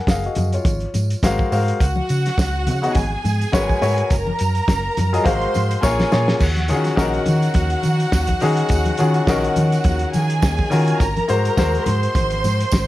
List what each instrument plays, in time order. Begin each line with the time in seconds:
Already playing: grand piano A#4 F#5 G#5
0.07 fingered electric bass F#1, grand piano G#4 F5, kick, snare, closed hi-hat, tambourine
0.24 grand piano F#4 D#5, closed hi-hat, muted conga
0.35 fingered electric bass F#2, closed hi-hat, tambourine, high conga, low conga
0.53 grand piano F4 C#5, closed hi-hat, tambourine
0.65 fingered electric bass G#1, kick, closed hi-hat, tambourine, muted conga, high conga, low conga
0.80 closed hi-hat, muted conga
0.94 fingered electric bass G#2, closed hi-hat, tambourine, high conga
1.10 closed hi-hat, tambourine
1.23 fingered electric bass G#1, grand piano G#3 F#4 A#4 C5 F5, kick, snare, closed hi-hat, tambourine
1.38 kick, tambourine, muted conga, high conga
1.51 fingered electric bass G#2, grand piano G#3 F#4 A#4 C5 F5, open hi-hat, tambourine
1.68 closed hi-hat
1.80 fingered electric bass C#2, violin section F#4 F#5, kick, closed hi-hat, tambourine, muted conga, low conga
1.96 muted conga, high conga
2.09 fingered electric bass C#3, closed hi-hat, tambourine
2.26 snare, closed hi-hat, tambourine
2.38 fingered electric bass C#2, kick, snare, closed hi-hat, tambourine, muted conga
2.67 fingered electric bass C#3, closed hi-hat, tambourine, high conga, low conga
2.82 grand piano C#3 B3 D#4 F#4, closed hi-hat, tambourine
2.95 fingered electric bass G#1, violin section G#4 G#5, kick, closed hi-hat, tambourine, muted conga, high conga, low conga
3.24 fingered electric bass G#2, closed hi-hat, tambourine, high conga
3.41 closed hi-hat, tambourine
3.52 fingered electric bass G#1, grand piano G#3 F#4 A#4 B4 C#5, kick, snare, closed hi-hat, tambourine
3.69 kick, tambourine, high conga
3.81 fingered electric bass G#2, grand piano G#3 F#4 A#4 B4 C#5, open hi-hat, tambourine
3.98 closed hi-hat
4.10 fingered electric bass F#1, violin section A#4 A#5, kick, closed hi-hat, tambourine, muted conga, low conga
4.27 high conga
4.39 fingered electric bass F#2, closed hi-hat, tambourine
4.55 closed hi-hat, tambourine
4.68 fingered electric bass F#1, kick, snare, closed hi-hat, tambourine
4.97 fingered electric bass F#2, closed hi-hat, tambourine, high conga, low conga
5.13 grand piano F#3 F4 G#4 A#4 D#5, closed hi-hat, tambourine
5.24 fingered electric bass G#1, grand piano G#3 F#4 A#4 C5 F5, violin section C5 C6, kick, closed hi-hat, tambourine, muted conga, high conga, low conga
5.41 closed hi-hat
5.54 fingered electric bass G#2, closed hi-hat, tambourine, high conga
5.71 closed hi-hat, tambourine
5.82 fingered electric bass A#1, grand piano A#3 F4 G#4 C#5, violin section G#4 G#5, kick, snare, tambourine
5.99 snare, tambourine, high conga
6.11 fingered electric bass A#2, grand piano A#3 F4 G#4 C#5, snare, tambourine
6.28 snare
6.39 fingered electric bass D#2, violin section F#4 F#5, kick, crash, tambourine, muted conga, low conga
6.56 closed hi-hat, muted conga, high conga
6.68 grand piano D#3 C#4 F4 F#4 G#4, fingered electric bass D#3, closed hi-hat, tambourine
6.84 snare, closed hi-hat, tambourine
6.96 fingered electric bass A#1, grand piano D#3 C#4 D#4 F#4 A#4, kick, snare, tambourine
7.14 closed hi-hat
7.26 fingered electric bass D#3, closed hi-hat, tambourine, high conga, low conga
7.42 closed hi-hat, tambourine
7.54 fingered electric bass D#2, kick, closed hi-hat, tambourine, muted conga, high conga, low conga
7.70 closed hi-hat, muted conga
7.83 fingered electric bass D#3, closed hi-hat, tambourine, high conga
8.00 closed hi-hat, tambourine
8.12 fingered electric bass D#2, kick, snare, tambourine, muted conga
8.27 kick, closed hi-hat, muted conga, high conga
8.40 grand piano D#3 C#4 D#4 F#4 G#4, fingered electric bass D#3, open hi-hat, tambourine
8.57 closed hi-hat
8.69 fingered electric bass D#2, kick, closed hi-hat, tambourine, low conga
8.85 closed hi-hat, muted conga, high conga
8.97 grand piano D#3 C#4 F4 F#4 G#4, fingered electric bass D#3, closed hi-hat, tambourine
9.14 closed hi-hat
9.27 fingered electric bass A#1, grand piano D#3 C#4 D#4 F#4 A#4, kick, snare, tambourine, muted conga
9.44 closed hi-hat, muted conga
9.56 fingered electric bass D#3, closed hi-hat, tambourine, high conga, low conga
9.72 closed hi-hat, tambourine
9.84 fingered electric bass D#2, kick, closed hi-hat, tambourine, muted conga, high conga, low conga
9.99 closed hi-hat
10.13 fingered electric bass D#3, violin section G#4 G#5, closed hi-hat, tambourine, high conga
10.30 closed hi-hat
10.42 fingered electric bass D#2, kick, snare, tambourine
10.57 kick, closed hi-hat, muted conga, high conga
10.70 grand piano D#3 C#4 F4 F#4 A#4, fingered electric bass D#3, open hi-hat, tambourine
10.87 closed hi-hat
10.99 fingered electric bass G#1, violin section A#4 A#5, kick, closed hi-hat, tambourine, low conga
11.17 closed hi-hat, high conga
11.28 fingered electric bass G#2, grand piano G#3 F#4 A#4 C5, closed hi-hat, tambourine
11.45 closed hi-hat, tambourine
11.57 fingered electric bass D#2, grand piano G#3 F#4 A#4 C5, kick, snare, tambourine, muted conga
11.74 closed hi-hat, muted conga
11.86 fingered electric bass G#2, violin section C5 C6, closed hi-hat, tambourine, high conga, low conga
12.03 closed hi-hat
12.15 fingered electric bass G#1, kick, closed hi-hat, tambourine, muted conga, high conga, low conga
12.30 closed hi-hat, muted conga
12.44 fingered electric bass G#2, closed hi-hat, tambourine, high conga
12.60 closed hi-hat
12.71 fingered electric bass G#1, kick, snare, tambourine